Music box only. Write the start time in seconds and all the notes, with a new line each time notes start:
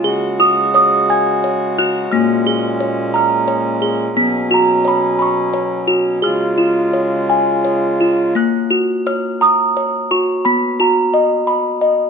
0.04 G#4
0.40 F#4 D#6
0.74 C#5 D#6
1.10 G#5 G#6
1.44 C#5
1.78 F#4 F#6
2.12 A#3 F6
2.47 G#4
2.81 C#5
3.14 A#5 F6
3.48 C#5
3.82 G#4
4.17 B3
4.51 F#4 A#5
4.85 C#5 B5
5.19 B5 C#6
5.54 C#5
5.88 F#4
6.22 G#4 F6
6.58 F4
6.93 C#5
7.30 G#5
7.65 C#5
8.00 F4
8.35 A#3 F#6
8.71 F#4
9.07 C#5 F6
9.41 A#5 D#6
9.77 C#5
10.11 F#4 C#6
10.45 B3 B5
10.80 F#4 A#5
11.14 D#5
11.47 B5
11.81 D#5